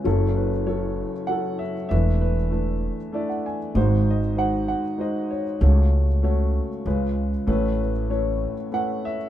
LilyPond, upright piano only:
<<
  \new Staff \with { instrumentName = "Upright piano" } { \time 3/4 \key fis \minor \tempo 4 = 97 << { r8 b'8 cis''4 fis''8 e''8 | e''8 b'4. e''16 fis''16 gis''8 | r8 dis''8 fis''8 fis''8 dis''8 cis''8~ | cis''4 r2 |
r8 b'8 cis''4 fis''8 e''8 | } \\ { <fis cis' e' a'>8 r8 <fis cis' e' a'>8 r8 <fis cis' e' a'>8 r8 | <a d' e' b'>8 r8 <a d' e' b'>8 r8 <a d' e' d''>8 r8 | <gis dis' fis' bis'>8 r8 <gis dis' fis' bis'>8 r8 <gis dis' fis' bis'>8 r8 | <a cis' fis' cis''>8 r8 <a cis' fis' cis''>8 r8 <gis cis' eis' b'>8 r8 |
<a cis' e' b'>8 r8 <a cis' e' b'>8 r8 <a cis' e' b'>8 r8 | } >> }
  \new Staff \with { instrumentName = "Upright piano" } { \clef bass \time 3/4 \key fis \minor <fis,, fis,>2. | <e, e>2. | <gis,, gis,>2. | <cis, cis>2 <cis, cis>4 |
<a,, a,>2. | }
>>